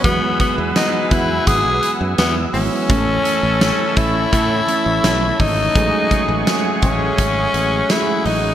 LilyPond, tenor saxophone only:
\new Staff \with { instrumentName = "Tenor saxophone" } { \time 4/4 \key fis \dorian \tempo 4 = 84 b8 b8 dis'8 e'8 gis'8 r8 b8 cis'8~ | cis'4. e'2 dis'8~ | dis'4 r8 cis'4. e'8 dis'8 | }